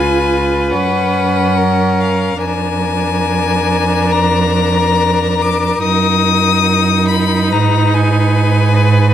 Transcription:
0.00 0.73 C#2 soft
0.00 0.73 F4 soft
0.00 1.58 B4 soft
0.00 0.73 G#5 medium
0.71 2.39 F#2 soft
0.71 2.38 C#4 soft
0.71 2.02 F#5 medium
1.56 2.38 A#4 soft
2.00 2.41 F5 soft
2.38 5.78 F2 soft
2.38 5.77 D4 soft
2.38 7.46 A#4 soft
2.38 4.13 G#5 medium
4.12 5.43 A#5 medium
5.41 5.82 D6 medium
5.82 7.53 F#2 medium
5.82 9.14 D#4 medium
5.82 7.06 D#6 medium
7.08 7.53 B5 medium
7.51 9.14 G#2 medium
7.51 9.14 B4 soft
7.51 7.96 A#5 medium
7.94 9.14 G#5 medium

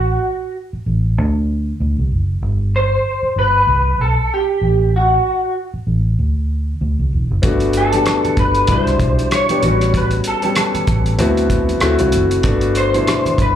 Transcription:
0.00 0.15 A1 medium
0.00 0.53 F#4 medium
0.73 muted fingered electric bass stroke soft
0.86 1.18 A1 medium
1.18 1.72 D2 medium
1.80 1.96 D2 medium
1.98 2.10 C2 medium
2.11 2.38 F#1 medium
2.42 2.97 G1 medium
2.76 3.38 C5 medium
3.23 muted fingered electric bass stroke soft
3.36 3.63 G1 medium
3.36 4.01 B4 medium
3.67 3.95 C2 medium
3.99 4.14 B1 medium
3.99 4.32 A4 medium
4.34 4.91 G4 medium
4.61 5.16 A1 medium
4.96 5.53 F#4 medium
5.74 muted fingered electric bass stroke soft
5.87 6.14 A1 medium
6.19 6.73 D2 medium
6.81 6.97 D2 medium
6.99 7.10 C2 medium
7.13 7.28 E1 medium
7.31 7.42 F#1 medium
7.42 7.98 G1 medium
7.42 7.81 A3 medium
7.42 7.81 B3 medium
7.42 7.81 D4 medium
7.42 7.81 F#4 medium
7.42 kick medium
7.42 closed hi-hat medium
7.42 muted conga soft
7.60 closed hi-hat soft
7.73 closed hi-hat medium
7.73 muted conga soft
7.77 8.35 A4 medium
7.93 8.68 A3 medium
7.93 8.69 B3 soft
7.93 8.68 D4 medium
7.93 8.69 G4 medium
7.93 closed hi-hat soft
7.93 high conga medium
8.06 cross-stick medium
8.06 closed hi-hat medium
8.25 muted fingered electric bass stroke soft
8.25 closed hi-hat soft
8.25 low conga soft
8.37 8.64 G1 medium
8.37 8.70 B4 medium
8.37 kick medium
8.37 closed hi-hat medium
8.37 muted conga soft
8.37 high conga medium
8.55 closed hi-hat soft
8.67 8.96 C2 medium
8.67 9.31 B2 medium
8.67 9.31 G3 medium
8.67 9.31 D4 medium
8.67 9.31 E4 medium
8.67 kick medium
8.67 closed hi-hat medium
8.67 muted conga soft
8.67 high conga medium
8.72 9.34 C5 medium
8.87 cross-stick soft
8.87 closed hi-hat soft
9.00 9.15 B1 medium
9.00 kick medium
9.00 closed hi-hat medium
9.19 closed hi-hat soft
9.19 high conga soft
9.31 9.97 C#5 medium
9.31 cross-stick medium
9.31 closed hi-hat medium
9.49 9.61 G3 medium
9.49 9.61 B3 medium
9.49 9.63 D4 medium
9.49 9.63 G4 medium
9.49 closed hi-hat soft
9.49 high conga medium
9.62 10.17 A1 medium
9.62 10.25 G3 medium
9.62 10.25 B3 medium
9.62 10.25 C#4 medium
9.62 10.26 F#4 medium
9.62 closed hi-hat medium
9.62 muted conga soft
9.62 low conga medium
9.81 cross-stick soft
9.81 closed hi-hat soft
9.94 10.05 B4 medium
9.94 kick medium
9.94 closed hi-hat medium
9.94 muted conga soft
10.11 closed hi-hat soft
10.24 12.10 A4 medium
10.24 closed hi-hat medium
10.24 muted conga soft
10.42 11.18 G3 medium
10.42 11.17 B3 medium
10.42 11.19 C#4 medium
10.42 11.19 G4 medium
10.42 closed hi-hat soft
10.42 high conga medium
10.55 cross-stick medium
10.55 closed hi-hat medium
10.55 muted conga soft
10.74 muted fingered electric bass stroke soft
10.74 closed hi-hat soft
10.74 low conga soft
10.87 11.19 A1 medium
10.87 kick medium
10.87 closed hi-hat medium
10.87 high conga medium
11.06 closed hi-hat soft
11.18 11.73 D2 medium
11.18 11.71 B3 medium
11.18 11.71 C4 medium
11.18 11.71 E4 medium
11.18 11.71 F#4 medium
11.18 closed hi-hat medium
11.18 muted conga soft
11.18 high conga medium
11.37 closed hi-hat soft
11.50 kick medium
11.50 closed hi-hat medium
11.50 muted conga soft
11.69 closed hi-hat soft
11.69 high conga soft
11.80 11.97 D2 medium
11.80 11.96 A3 medium
11.80 11.96 C4 medium
11.80 11.96 E4 medium
11.80 11.97 F#4 medium
11.80 cross-stick medium
11.80 closed hi-hat medium
11.99 12.11 C2 medium
11.99 12.35 A3 medium
11.99 12.36 C4 medium
11.99 12.36 E4 medium
11.99 12.36 F#4 medium
11.99 closed hi-hat soft
11.99 high conga medium
12.12 12.40 F#1 medium
12.12 closed hi-hat medium
12.12 muted conga soft
12.12 low conga medium
12.31 closed hi-hat soft
12.43 12.98 G1 medium
12.43 12.82 A3 medium
12.43 12.82 B3 medium
12.43 12.82 D4 medium
12.43 12.83 F#4 medium
12.43 kick medium
12.43 closed hi-hat medium
12.43 muted conga soft
12.61 closed hi-hat soft
12.75 13.41 C5 medium
12.75 closed hi-hat medium
12.94 13.55 B2 medium
12.94 13.55 A3 medium
12.94 13.55 D4 medium
12.94 13.55 E4 medium
12.94 closed hi-hat soft
12.94 high conga medium
13.07 cross-stick medium
13.07 closed hi-hat medium
13.07 muted conga soft
13.25 muted fingered electric bass stroke soft
13.25 closed hi-hat soft
13.25 low conga medium
13.38 13.55 G1 medium
13.38 13.55 B4 medium
13.38 kick medium
13.38 closed hi-hat medium
13.38 high conga medium

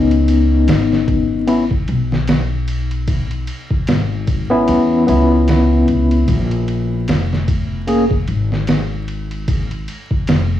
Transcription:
0.00 0.65 C#2 medium
0.00 1.43 B3 medium
0.00 1.44 C#4 medium
0.00 1.44 D#4 medium
0.11 ride soft
0.28 ride medium
0.68 1.85 G#1 medium
0.68 snare loud
0.68 ride medium
0.92 snare soft
1.08 kick medium
1.08 ride medium
1.47 1.63 B3 medium
1.47 1.64 C#4 medium
1.47 1.64 E4 medium
1.47 ride medium
1.71 kick medium
1.88 3.45 B1 medium
1.88 ride medium
2.12 snare soft
2.27 snare loud
2.27 ride medium
2.68 ride medium
2.91 ride soft
3.07 kick loud
3.07 ride medium
3.31 ride soft
3.47 ride medium
3.71 kick medium
3.87 4.65 G#1 medium
3.87 snare loud
3.87 ride medium
4.27 kick medium
4.27 ride medium
4.50 5.03 B3 medium
4.50 5.04 C#4 medium
4.50 5.04 E4 loud
4.68 5.04 E2 medium
4.68 ride medium
5.07 5.85 C#2 loud
5.07 6.25 B3 medium
5.07 6.26 C#4 medium
5.07 6.26 E4 medium
5.07 ride medium
5.48 snare medium
5.48 ride medium
5.88 6.24 C#2 medium
5.88 ride medium
6.11 ride soft
6.28 7.05 A#1 medium
6.28 kick loud
6.28 ride medium
6.51 ride soft
6.68 ride medium
7.08 8.25 F1 medium
7.08 snare loud
7.08 ride medium
7.33 snare soft
7.48 kick medium
7.48 ride medium
7.87 8.03 A#3 medium
7.87 8.04 C#4 medium
7.87 8.04 G#4 medium
7.87 ride medium
8.11 kick medium
8.28 9.85 G#1 medium
8.28 ride medium
8.52 snare soft
8.67 snare loud
8.67 ride medium
9.08 ride medium
9.31 ride soft
9.48 kick loud
9.48 ride medium
9.71 ride soft
9.88 ride medium
10.11 kick medium
10.28 10.60 F1 medium
10.28 snare loud
10.28 ride medium

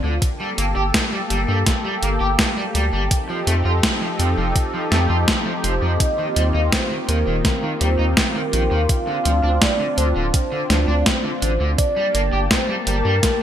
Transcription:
0.00 0.20 D2 medium
0.00 0.13 D3 loud
0.00 0.18 C4 medium
0.00 0.19 D4 medium
0.00 0.18 F4 medium
0.22 3.08 A#3 medium
0.22 8.85 G4 medium
0.22 3.08 A4 medium
0.22 kick loud
0.22 closed hi-hat loud
0.40 0.49 G3 medium
0.58 0.74 G1 loud
0.58 0.63 A#3 medium
0.58 closed hi-hat medium
0.76 0.92 G1 medium
0.76 0.82 G4 loud
0.94 kick loud
0.94 snare loud
0.94 closed hi-hat medium
1.12 1.18 G3 loud
1.30 1.46 G1 medium
1.30 1.39 G3 medium
1.30 closed hi-hat medium
1.48 1.64 G2 medium
1.48 1.57 G3 loud
1.66 kick loud
1.66 snare medium
1.66 closed hi-hat medium
1.84 1.94 G3 medium
2.02 2.18 G1 medium
2.02 2.08 A#3 medium
2.02 closed hi-hat medium
2.20 2.36 G1 medium
2.20 2.26 G4 loud
2.39 kick loud
2.39 snare loud
2.39 closed hi-hat medium
2.57 2.62 G3 loud
2.75 2.91 D2 loud
2.75 2.84 G3 medium
2.75 closed hi-hat medium
2.93 3.09 G1 medium
2.93 3.02 G3 loud
3.11 5.97 F3 medium
3.11 11.75 C4 medium
3.11 5.97 D#4 medium
3.11 5.97 A4 medium
3.11 kick loud
3.11 closed hi-hat medium
3.29 3.38 F3 medium
3.47 3.63 F2 medium
3.47 3.53 A3 medium
3.47 closed hi-hat medium
3.65 3.81 F2 medium
3.65 3.71 F4 loud
3.83 kick loud
3.83 snare loud
3.83 closed hi-hat loud
4.01 4.07 F3 loud
4.19 4.35 F2 medium
4.19 4.28 F3 medium
4.19 closed hi-hat medium
4.37 4.53 F1 medium
4.37 4.47 F3 loud
4.56 kick loud
4.56 closed hi-hat medium
4.74 4.83 F3 medium
4.92 5.08 F2 loud
4.92 4.97 A3 medium
4.92 snare medium
4.92 closed hi-hat medium
5.10 5.26 F2 medium
5.10 5.15 F4 loud
5.28 kick loud
5.28 snare loud
5.28 closed hi-hat medium
5.46 5.51 F3 loud
5.64 5.80 F1 medium
5.64 5.73 F3 medium
5.64 closed hi-hat medium
5.82 5.98 F2 medium
5.82 5.91 F3 loud
6.00 8.86 D#3 medium
6.00 8.86 A#3 medium
6.00 11.74 F4 medium
6.00 6.74 D#5 loud
6.00 kick loud
6.00 closed hi-hat medium
6.18 6.27 D#3 medium
6.36 6.52 D#2 loud
6.36 6.42 G3 medium
6.36 closed hi-hat medium
6.54 6.70 D#2 medium
6.54 6.60 D#4 loud
6.72 7.10 C5 loud
6.72 kick loud
6.72 snare loud
6.72 closed hi-hat medium
6.91 6.96 D#3 loud
7.09 7.24 D#2 medium
7.09 7.18 D#3 medium
7.09 7.44 A#4 medium
7.09 closed hi-hat medium
7.27 7.43 D#1 medium
7.27 7.36 D#3 loud
7.45 7.82 A#4 loud
7.45 kick loud
7.45 snare medium
7.45 closed hi-hat medium
7.63 7.72 D#3 medium
7.81 7.97 D#2 loud
7.81 7.86 G3 medium
7.81 8.10 C5 loud
7.81 closed hi-hat medium
7.99 8.15 D#2 medium
7.99 8.04 D#4 loud
8.10 8.19 C5 medium
8.17 8.91 A#4 loud
8.17 kick loud
8.17 snare loud
8.17 closed hi-hat medium
8.35 8.41 D#3 loud
8.53 8.69 A#1 loud
8.53 8.62 D#3 medium
8.53 closed hi-hat medium
8.71 8.87 D#2 medium
8.71 8.80 D#3 loud
8.89 11.76 D4 medium
8.89 9.63 F5 loud
8.89 kick loud
8.89 closed hi-hat medium
9.07 9.16 D3 medium
9.25 9.41 D2 loud
9.25 9.31 F3 medium
9.25 closed hi-hat medium
9.43 9.59 D2 medium
9.43 9.49 D4 loud
9.62 9.99 D5 loud
9.62 kick loud
9.62 snare loud
9.62 closed hi-hat medium
9.80 9.85 D3 loud
9.98 10.14 D2 loud
9.98 10.07 D3 medium
9.98 10.71 C5 loud
9.98 closed hi-hat medium
10.16 10.32 D1 medium
10.16 10.25 D3 loud
10.34 kick loud
10.34 closed hi-hat medium
10.52 10.61 D3 medium
10.70 10.86 D2 medium
10.70 10.75 F3 medium
10.70 11.07 D5 loud
10.70 snare medium
10.70 closed hi-hat medium
10.88 11.04 D2 medium
10.88 10.93 D4 loud
11.06 11.78 C5 loud
11.06 kick loud
11.06 snare loud
11.06 closed hi-hat medium
11.24 11.30 D3 loud
11.42 11.58 A1 medium
11.42 11.51 D3 medium
11.42 closed hi-hat medium
11.60 11.76 D2 medium
11.60 11.69 D3 loud
11.78 13.43 A#3 medium
11.78 13.43 G4 medium
11.78 12.47 D5 loud
11.78 13.43 A5 medium
11.78 kick loud
11.78 closed hi-hat medium
11.96 12.06 G3 medium
12.15 12.30 G1 medium
12.15 12.20 A#3 medium
12.15 closed hi-hat medium
12.33 12.49 G1 medium
12.33 12.38 G4 loud
12.51 12.84 C5 medium
12.51 kick loud
12.51 snare loud
12.51 closed hi-hat loud
12.69 12.74 G3 loud
12.87 13.03 G1 medium
12.87 12.96 G3 medium
12.87 13.43 A#4 loud
12.87 closed hi-hat medium
13.05 13.21 G2 medium
13.05 13.14 G3 loud
13.23 kick loud
13.23 snare medium
13.23 closed hi-hat medium

